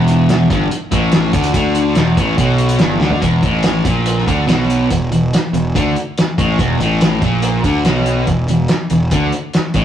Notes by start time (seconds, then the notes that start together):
Already playing: E1 E2
0.08 closed hi-hat
0.29 snare, closed hi-hat
0.50 G1 G2, kick, closed hi-hat
0.71 muted picked electric bass stroke, muted distorted electric guitar stroke, closed hi-hat
0.92 A1 A2, kick, closed hi-hat
1.12 snare, closed hi-hat
1.33 D2 D3, kick, closed hi-hat
1.44 closed hi-hat
1.54 D2 D3, kick, closed hi-hat
1.75 closed hi-hat
1.95 E1 E2, snare, closed hi-hat
2.17 A1 A2, kick, closed hi-hat
2.38 B1 B2, kick, closed hi-hat
2.58 closed hi-hat
2.69 closed hi-hat
2.79 G1 G2, snare, closed hi-hat
3.00 D2 D3, snare
3.10 floor tom
3.22 E1 E2, kick, closed hi-hat
3.43 A1 A2, kick, closed hi-hat
3.63 snare, closed hi-hat
3.85 A#1 A#2, kick, closed hi-hat
4.06 closed hi-hat
4.18 snare
4.27 D2 D3, kick, closed hi-hat
4.47 B1 B2, snare, closed hi-hat
4.70 closed hi-hat
4.90 E1 E2, kick, closed hi-hat
5.12 E1 E2, closed hi-hat
5.34 snare, closed hi-hat
5.53 E1 E2, closed hi-hat
5.75 D2 D3, kick, closed hi-hat
5.96 closed hi-hat
6.18 snare, closed hi-hat
6.38 A1 A2, kick, closed hi-hat
6.59 E1 E2, kick, closed hi-hat
6.79 A1 A2, closed hi-hat
7.01 snare, closed hi-hat
7.22 A#1 A#2, kick, closed hi-hat
7.42 closed hi-hat
7.64 D2 D3, kick, closed hi-hat
7.85 B1 B2, snare, closed hi-hat
8.06 closed hi-hat
8.27 E1 E2, kick, closed hi-hat
8.48 E1 E2, closed hi-hat
8.68 snare, closed hi-hat
8.90 E1 E2, closed hi-hat
9.11 D2 D3, kick, closed hi-hat
9.32 closed hi-hat
9.53 snare, closed hi-hat
9.74 A1 A2, kick, closed hi-hat